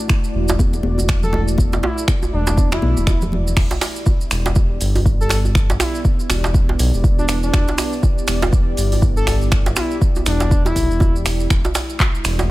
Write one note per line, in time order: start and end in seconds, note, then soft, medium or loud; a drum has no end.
0.00 3.53 A3 medium
0.00 3.53 E4 medium
0.00 3.53 F#4 medium
0.00 3.53 D5 medium
0.08 finger snap loud
0.08 kick loud
0.08 muted conga medium
0.08 djembe tone medium
0.08 maracas medium
0.24 maracas soft
0.35 0.81 E1 medium
0.48 muted conga soft
0.48 djembe slap loud
0.48 djembe tone medium
0.48 maracas medium
0.59 kick loud
0.59 high conga medium
0.59 maracas medium
0.73 muted conga medium
0.73 maracas soft
0.83 1.80 E1 medium
0.83 high conga medium
0.98 muted conga soft
0.98 djembe tone medium
0.98 maracas medium
1.08 finger snap loud
1.08 kick loud
1.08 maracas medium
1.23 1.41 A4 loud
1.23 low conga medium
1.23 maracas soft
1.33 djembe slap medium
1.33 muted conga medium
1.33 high conga medium
1.33 djembe tone medium
1.48 maracas medium
1.58 kick loud
1.58 muted conga medium
1.58 high conga medium
1.58 maracas medium
1.73 djembe slap loud
1.73 maracas soft
1.83 2.03 E4 medium
1.83 muted conga soft
1.83 djembe slap loud
1.83 djembe tone medium
1.98 maracas medium
2.08 finger snap loud
2.08 kick loud
2.08 muted conga medium
2.08 maracas medium
2.23 djembe tone loud
2.23 maracas soft
2.33 2.80 E1 medium
2.33 2.69 D4 loud
2.47 djembe slap loud
2.47 muted conga soft
2.47 maracas medium
2.57 kick loud
2.57 high conga medium
2.57 maracas medium
2.72 3.22 E4 loud
2.72 finger snap medium
2.72 muted conga medium
2.72 djembe slap medium
2.72 djembe tone medium
2.72 maracas soft
2.82 2.95 B1 loud
2.82 high conga loud
2.97 3.54 E1 medium
2.97 muted conga soft
2.97 maracas medium
3.07 finger snap loud
3.07 kick loud
3.07 high conga medium
3.07 djembe tone medium
3.07 maracas medium
3.22 low conga loud
3.22 maracas soft
3.32 muted conga medium
3.32 low conga medium
3.47 maracas medium
3.57 3.69 E1 loud
3.57 11.46 B3 medium
3.57 12.51 E4 medium
3.57 11.46 G4 medium
3.57 11.46 D5 medium
3.57 finger snap medium
3.57 kick loud
3.57 crash loud
3.57 maracas medium
3.71 djembe slap loud
3.71 djembe tone medium
3.71 maracas soft
3.81 finger snap medium
3.81 open hi-hat medium
3.81 djembe slap loud
3.81 maracas loud
3.96 maracas soft
4.06 kick loud
4.06 djembe tone medium
4.06 maracas medium
4.21 maracas soft
4.31 4.78 E1 medium
4.31 finger snap medium
4.31 open hi-hat medium
4.31 maracas medium
4.46 djembe slap loud
4.46 maracas soft
4.56 kick loud
4.56 djembe tone medium
4.56 maracas medium
4.81 5.77 G1 medium
4.81 open hi-hat loud
4.81 maracas medium
4.95 open hi-hat medium
4.95 djembe tone loud
4.95 maracas soft
5.06 kick loud
5.06 maracas medium
5.21 5.38 A4 loud
5.21 maracas soft
5.29 finger snap medium
5.29 open hi-hat medium
5.29 djembe slap medium
5.29 maracas medium
5.45 djembe tone medium
5.45 maracas soft
5.55 finger snap loud
5.55 kick loud
5.55 maracas medium
5.70 djembe slap loud
5.70 maracas soft
5.80 6.00 E4 loud
5.80 finger snap medium
5.80 open hi-hat medium
5.80 djembe slap loud
5.80 djembe tone medium
5.80 maracas loud
5.95 maracas soft
6.05 kick loud
6.05 maracas medium
6.20 maracas soft
6.30 6.76 E1 medium
6.30 finger snap medium
6.30 open hi-hat medium
6.30 djembe tone medium
6.30 maracas loud
6.44 djembe slap loud
6.44 maracas soft
6.54 kick loud
6.54 maracas medium
6.69 djembe slap medium
6.69 djembe tone loud
6.79 6.91 B1 loud
6.79 open hi-hat medium
6.79 maracas medium
6.94 7.51 E1 medium
6.94 maracas soft
7.04 kick loud
7.04 maracas medium
7.19 7.25 D4 loud
7.19 djembe tone medium
7.19 maracas soft
7.28 7.38 D4 medium
7.28 finger snap medium
7.28 open hi-hat medium
7.28 maracas medium
7.43 7.93 D4 loud
7.43 maracas soft
7.53 7.66 E1 loud
7.53 finger snap loud
7.53 kick loud
7.53 djembe tone medium
7.53 maracas medium
7.68 djembe slap loud
7.68 maracas soft
7.78 finger snap medium
7.78 open hi-hat medium
7.78 djembe slap loud
7.78 maracas medium
7.93 maracas soft
8.03 kick loud
8.03 djembe tone medium
8.03 maracas medium
8.18 maracas soft
8.28 8.75 E1 medium
8.28 finger snap medium
8.28 open hi-hat medium
8.28 maracas loud
8.42 djembe slap loud
8.42 djembe tone loud
8.42 maracas soft
8.53 kick loud
8.53 maracas medium
8.77 9.74 G1 medium
8.77 open hi-hat medium
8.77 maracas loud
8.92 open hi-hat medium
8.92 djembe tone medium
8.92 maracas soft
9.02 kick loud
9.02 maracas soft
9.17 9.34 A4 loud
9.17 maracas soft
9.27 finger snap medium
9.27 open hi-hat medium
9.27 djembe slap medium
9.27 djembe tone loud
9.27 maracas medium
9.42 maracas soft
9.52 finger snap medium
9.52 kick loud
9.52 maracas medium
9.66 djembe slap loud
9.66 maracas soft
9.76 9.97 E4 loud
9.76 finger snap medium
9.76 open hi-hat medium
9.76 djembe slap loud
9.76 djembe tone medium
9.76 maracas medium
9.91 maracas soft
10.01 kick loud
10.01 maracas medium
10.16 djembe tone loud
10.16 maracas soft
10.26 10.73 E1 medium
10.26 10.63 D4 medium
10.26 finger snap medium
10.26 open hi-hat medium
10.26 maracas medium
10.40 djembe slap loud
10.40 maracas soft
10.51 kick loud
10.51 maracas medium
10.65 11.15 E4 loud
10.65 djembe slap medium
10.65 djembe tone medium
10.65 maracas soft
10.76 10.88 B1 loud
10.76 kick medium
10.76 open hi-hat medium
10.76 maracas medium
10.91 11.25 E1 medium
10.91 maracas soft
11.00 kick loud
11.00 djembe tone loud
11.00 maracas medium
11.16 maracas soft
11.26 11.47 E1 medium
11.26 finger snap medium
11.26 open hi-hat medium
11.26 maracas medium
11.40 maracas soft
11.50 11.62 E1 loud
11.50 12.51 A3 medium
11.50 12.51 F#4 medium
11.50 12.51 D5 medium
11.50 finger snap medium
11.50 kick loud
11.50 maracas medium
11.65 djembe slap medium
11.65 djembe tone medium
11.65 maracas soft
11.75 finger snap medium
11.75 open hi-hat medium
11.75 djembe slap loud
11.75 maracas medium
11.90 maracas soft
11.99 kick loud
11.99 clap loud
11.99 djembe tone medium
11.99 maracas medium
12.15 maracas soft
12.25 12.51 E1 medium
12.25 finger snap medium
12.25 open hi-hat medium
12.25 maracas medium
12.39 djembe slap loud
12.39 maracas soft